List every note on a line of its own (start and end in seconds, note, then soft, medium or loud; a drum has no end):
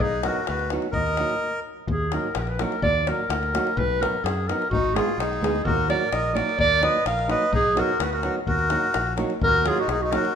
0.00 0.29 B1 loud
0.00 0.25 D#4 medium
0.00 0.23 G#4 loud
0.00 davul low medium
0.23 0.38 F#3 soft
0.23 0.39 B3 medium
0.23 0.39 D#4 soft
0.23 0.46 F#4 medium
0.23 0.39 F#4 medium
0.23 0.46 A#4 medium
0.23 davul high medium
0.47 0.77 D2 medium
0.47 0.70 F#4 medium
0.47 0.70 B4 medium
0.47 davul high medium
0.59 davul high soft
0.70 0.86 F#3 medium
0.70 0.86 B3 medium
0.70 0.86 D#4 soft
0.70 0.86 F#4 medium
0.70 davul high medium
0.82 davul high soft
0.91 1.22 D#2 loud
0.91 1.60 A#4 medium
0.91 1.61 D#5 loud
0.91 davul low medium
1.07 davul high soft
1.17 1.33 F#3 medium
1.17 1.33 A#3 medium
1.17 1.33 D#4 soft
1.17 1.34 F#4 medium
1.17 davul high medium
1.30 davul high soft
1.88 2.17 D#2 loud
1.88 2.15 G#4 medium
1.88 davul low medium
2.12 2.27 F#3 medium
2.12 2.27 A#3 medium
2.12 2.27 D#4 medium
2.12 2.28 F#4 medium
2.12 2.36 A#4 medium
2.12 davul high medium
2.35 2.64 A#1 loud
2.35 2.43 B4 medium
2.35 davul high medium
2.41 2.50 A#4 medium
2.47 2.62 B4 medium
2.47 davul high soft
2.59 2.74 F#3 medium
2.59 2.74 A#3 medium
2.59 2.75 D#4 medium
2.59 2.75 F#4 medium
2.59 2.82 A#4 medium
2.59 davul high medium
2.72 davul high soft
2.82 3.11 D#2 loud
2.82 3.09 D5 loud
2.82 davul low medium
3.06 3.21 F#3 medium
3.06 3.21 A#3 medium
3.06 3.21 D#4 medium
3.06 3.21 F#4 medium
3.06 3.31 A#4 medium
3.06 davul high medium
3.29 3.58 D2 loud
3.29 3.78 A#4 loud
3.29 davul high medium
3.43 davul high soft
3.54 3.68 F#3 medium
3.54 3.68 A#3 medium
3.54 3.69 D#4 medium
3.54 3.69 F#4 medium
3.54 davul high medium
3.67 davul high soft
3.77 4.05 B1 loud
3.77 4.03 B4 loud
3.77 davul low medium
4.00 4.14 F#3 medium
4.00 4.15 B3 medium
4.00 4.15 D#4 soft
4.00 4.15 F#4 medium
4.00 4.26 A#4 medium
4.00 davul high medium
4.24 4.52 F#2 medium
4.24 4.50 G#4 medium
4.24 davul high medium
4.48 4.62 F#3 medium
4.48 4.62 B3 medium
4.48 4.63 D#4 medium
4.48 4.63 F#4 medium
4.48 4.69 A#4 medium
4.48 davul high medium
4.62 davul high soft
4.70 4.99 G#1 loud
4.70 4.94 D#4 medium
4.70 4.96 F#4 loud
4.70 davul low medium
4.84 davul high soft
4.94 5.09 G#3 medium
4.94 5.09 B3 medium
4.94 5.09 D#4 medium
4.94 5.19 F4 medium
4.94 5.18 G#4 medium
4.94 5.09 G#4 medium
4.94 davul high medium
5.09 davul high soft
5.18 5.39 B1 medium
5.18 5.62 D#4 medium
5.18 5.66 G#4 medium
5.18 davul high medium
5.33 davul high soft
5.41 5.63 D2 medium
5.41 5.56 G#3 soft
5.41 5.56 B3 medium
5.41 5.56 D#4 soft
5.41 5.57 G#4 medium
5.41 davul high medium
5.56 davul high soft
5.65 5.93 D#2 loud
5.65 5.89 F#4 medium
5.65 5.88 A#4 loud
5.65 davul low medium
5.88 6.03 F#3 medium
5.88 6.03 A#3 soft
5.88 6.03 D#4 medium
5.88 6.03 F#4 medium
5.88 6.09 A#4 medium
5.88 6.14 D5 medium
5.88 davul high medium
6.11 6.41 A#1 medium
6.11 6.32 A#4 medium
6.11 6.36 D#5 medium
6.11 davul high medium
6.25 davul high soft
6.33 6.49 F#3 medium
6.33 6.49 A#3 medium
6.33 6.50 D#4 medium
6.33 6.50 F#4 medium
6.33 6.57 A#4 medium
6.33 6.59 D5 medium
6.33 davul high medium
6.49 davul high soft
6.58 6.87 D#2 loud
6.58 6.80 A#4 medium
6.58 6.81 D5 loud
6.58 davul low medium
6.81 6.96 F#3 soft
6.81 6.96 A#3 soft
6.81 6.96 D#4 soft
6.81 6.97 F#4 medium
6.81 7.04 B4 medium
6.81 7.05 D#5 loud
6.81 davul high medium
7.05 7.34 A#1 medium
7.05 7.27 A#4 medium
7.05 7.28 F5 loud
7.05 davul high medium
7.19 davul high soft
7.28 7.43 F#3 medium
7.28 7.43 A#3 medium
7.28 7.43 D#4 medium
7.28 7.44 F#4 medium
7.28 7.51 B4 medium
7.28 7.52 D#5 loud
7.28 davul high medium
7.42 davul high soft
7.52 7.81 B1 loud
7.52 7.74 D#4 medium
7.52 7.81 G#4 loud
7.52 davul low medium
7.75 7.90 F#3 medium
7.75 7.90 B3 medium
7.75 7.91 D#4 medium
7.75 7.98 F#4 medium
7.75 7.91 F#4 medium
7.75 8.04 A#4 loud
7.75 davul high medium
8.00 8.28 D2 medium
8.00 8.10 F#4 medium
8.00 8.16 B4 medium
8.00 davul high medium
8.12 8.35 F#4 medium
8.12 8.36 A#4 medium
8.12 davul high soft
8.23 8.38 F#3 medium
8.23 8.38 B3 soft
8.23 8.38 D#4 medium
8.23 8.39 F#4 medium
8.23 davul high medium
8.47 8.75 D#2 loud
8.47 9.13 F#4 medium
8.47 9.14 A#4 loud
8.47 davul low medium
8.59 davul high soft
8.70 8.84 F#3 medium
8.70 8.85 A#3 medium
8.70 8.85 D#4 soft
8.70 8.85 F#4 medium
8.70 davul high medium
8.94 9.23 A#1 medium
8.94 davul high medium
9.07 davul high soft
9.17 9.31 F#3 medium
9.17 9.32 A#3 medium
9.17 9.32 D#4 medium
9.17 9.32 F#4 medium
9.17 davul high medium
9.30 davul high soft
9.41 9.69 D#2 loud
9.41 9.65 F#4 medium
9.41 9.69 A#4 loud
9.41 davul low medium
9.55 davul high soft
9.65 9.79 F#3 medium
9.65 9.79 A#3 medium
9.65 9.79 D#4 soft
9.65 9.80 F#4 medium
9.65 9.81 G#4 loud
9.65 davul high medium
9.69 9.78 F4 medium
9.78 9.89 D#4 medium
9.78 9.90 F#4 medium
9.78 davul high soft
9.88 10.16 B1 medium
9.88 10.01 D#4 medium
9.88 10.03 G#4 medium
9.88 davul high medium
10.01 10.13 D#4 medium
10.01 10.13 F#4 medium
10.11 10.25 F#3 medium
10.11 10.25 A#3 medium
10.11 10.26 D#4 medium
10.11 10.26 F#4 medium
10.11 10.35 F#4 medium
10.11 10.35 A#4 loud
10.11 davul high medium
10.25 davul high soft